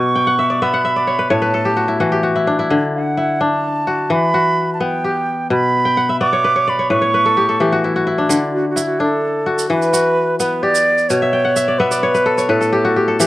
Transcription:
Already playing: kora B2 B3 G4, flute C#6
0.15 kora G5
0.27 kora F#5
0.39 kora E5
0.50 kora D5
0.62 kora B3 E5, flute B5
0.74 kora F#5
0.85 kora E5
0.96 kora D5
1.07 kora C#5
1.19 kora B4
1.30 kora A2 C#5, flute A5
1.42 kora B4
1.54 kora A4
1.65 kora G4
1.77 kora F#4
1.88 kora E4
2.00 kora E3 F#4
2.12 kora G4
2.23 kora F#4
2.36 kora E4
2.47 kora D4
2.59 kora E4
2.70 kora D3
2.94 flute F#5
3.17 kora E4
3.41 kora D4, flute A5
3.87 kora F#4
4.10 kora E3, flute B5
4.34 kora F#4
4.74 flute A5
4.80 kora B3, flute G5
5.04 kora G4
5.50 kora B2, flute B5
5.85 kora G5
5.97 kora F#5
6.09 kora E5
6.21 kora B3 D5, flute D6
6.33 kora C#5
6.44 kora B4
6.56 kora C#5
6.68 kora D5, flute B5
6.79 kora C#5
6.90 kora A2 B4, flute C#6
7.01 kora C#5
7.14 kora B4
7.25 kora A4
7.37 kora G4
7.49 kora A4
7.60 kora E3 G4
7.72 kora F#4
7.84 kora E4
7.96 kora F#4
8.07 kora E4
8.18 kora D4
8.29 kora D3, shaker
8.53 flute F#4
8.70 flute F#4
8.76 kora E4, shaker
8.85 flute F#4
9.00 kora D4, flute A4
9.46 kora F#4
9.58 shaker
9.70 kora E3, flute B4
9.82 shaker
9.93 kora F#4, shaker
10.39 kora B3, flute B4, shaker
10.63 kora G4, flute D5
10.75 shaker
10.98 shaker
11.09 kora B2, flute C#5, shaker
11.22 kora E5
11.33 kora G5
11.45 kora F#5
11.56 kora E5, shaker
11.68 kora D5
11.79 kora B3 E5, flute B4
11.91 kora D5, shaker
12.03 kora C#5
12.14 kora B4, shaker
12.26 kora A4
12.38 kora C#5, shaker
12.49 kora A2 B4, flute A4
12.61 kora A4, shaker
12.73 kora G4
12.85 kora F#4
12.96 kora G4
13.08 kora A4
13.20 kora E3 G4, shaker

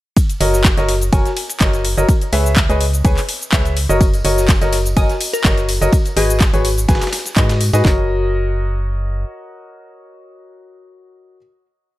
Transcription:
0.16 kick, closed hi-hat, ride, cabasa
0.29 closed hi-hat, cabasa
0.41 fm bass F#1, grand piano F#4 A#4 C#5 D#5, open hi-hat, ride
0.53 snare, cabasa
0.64 kick, snare, clap, closed hi-hat, ride, cabasa
0.77 fm bass F#1, grand piano F#4 A#4 C#5 D#5, snare, closed hi-hat, cabasa
0.89 snare, open hi-hat, ride
1.01 closed hi-hat, cabasa
1.13 fm bass F#1, grand piano F#4 A#4 C#5 G#5, kick, closed hi-hat, ride, cabasa
1.25 snare, closed hi-hat, cabasa
1.37 open hi-hat, ride
1.49 closed hi-hat, ride, cabasa
1.60 fm bass F#1, grand piano F#4 A#4 C#5 D#5, kick, snare, clap, closed hi-hat, ride, cabasa
1.73 snare, closed hi-hat, cabasa
1.85 open hi-hat, ride
1.97 fm bass F#1, grand piano F#4 A#4 C#5 D#5, closed hi-hat, cabasa
2.09 kick, closed hi-hat, ride, cabasa
2.21 closed hi-hat, cabasa
2.33 fm bass C#2, grand piano G#4 B4 C#5 E5, snare, open hi-hat, ride
2.46 cabasa
2.56 kick, snare, clap, closed hi-hat, ride, cabasa
2.69 fm bass C#2, grand piano G#4 B4 C#5 D#5, closed hi-hat, cabasa
2.81 open hi-hat, ride
2.93 closed hi-hat, cabasa
3.05 fm bass C#2, grand piano G#4 B4 C#5 G#5, kick, closed hi-hat, ride, cabasa
3.17 clap, open hi-hat, cabasa
3.29 open hi-hat, ride
3.41 closed hi-hat, cabasa
3.52 fm bass C#2, grand piano G#4 B4 C#5 E5, kick, snare, clap, closed hi-hat, ride, cabasa
3.65 closed hi-hat, ride, cabasa
3.77 open hi-hat, ride
3.89 fm bass F#1, grand piano F#4 A#4 C#5 D#5, closed hi-hat, cabasa
4.01 kick, closed hi-hat, ride, tambourine, cabasa
4.14 closed hi-hat, tambourine, cabasa
4.25 fm bass F#1, grand piano F#4 A#4 C#5 D#5, open hi-hat, ride, tambourine
4.37 snare, tambourine, cabasa
4.48 kick, snare, clap, closed hi-hat, ride, tambourine, cabasa
4.61 fm bass F#1, grand piano F#4 A#4 C#5 D#5, snare, closed hi-hat, tambourine, cabasa
4.72 snare, open hi-hat, ride, tambourine
4.85 closed hi-hat, tambourine, cabasa
4.96 fm bass F#1, grand piano F#4 A#4 C#5 G#5, synth pluck D#5, kick, closed hi-hat, ride, tambourine, cabasa
5.09 snare, closed hi-hat, tambourine, cabasa
5.21 open hi-hat, ride, tambourine
5.33 synth pluck A#4, closed hi-hat, ride, tambourine, cabasa
5.44 fm bass F#1, grand piano F#4 A#4 C#5 D#5, synth pluck A#4, kick, snare, clap, closed hi-hat, ride, tambourine, cabasa
5.57 snare, closed hi-hat, cabasa
5.69 open hi-hat, ride, tambourine
5.81 fm bass F#1, grand piano F#4 A#4 C#5 D#5, closed hi-hat, tambourine, cabasa
5.93 kick, closed hi-hat, ride, tambourine, cabasa
6.05 closed hi-hat, tambourine, cabasa
6.17 fm bass G#1, grand piano F#4 G#4 B4 D#5, synth pluck G#4, snare, open hi-hat, ride, tambourine
6.30 closed hi-hat, tambourine, cabasa
6.40 kick, snare, clap, closed hi-hat, ride, tambourine, cabasa
6.53 fm bass G#1, grand piano F#4 G#4 B4 C#5, closed hi-hat, tambourine, cabasa
6.65 open hi-hat, ride, tambourine
6.77 closed hi-hat, tambourine, cabasa
6.89 fm bass G#1, grand piano F#4 G#4 B4 G#5, kick, snare, closed hi-hat, ride, tambourine, cabasa
6.95 snare, ride
7.01 snare, clap, open hi-hat, ride, tambourine, cabasa
7.07 snare, ride
7.13 snare, open hi-hat, ride, tambourine
7.25 snare, closed hi-hat, tambourine, cabasa
7.36 fm bass G#2, grand piano F#4 G#4 B4 D#5, kick, snare, clap, closed hi-hat, ride, tambourine, cabasa
7.49 snare, closed hi-hat, ride, cabasa
7.61 snare, open hi-hat, tambourine
7.73 fm bass G#2, grand piano F#4 G#4 B4 D#5, snare, closed hi-hat, ride, tambourine, cabasa
7.85 fm bass F#1, grand piano F#4 A#4 C#5 D#5, kick, snare

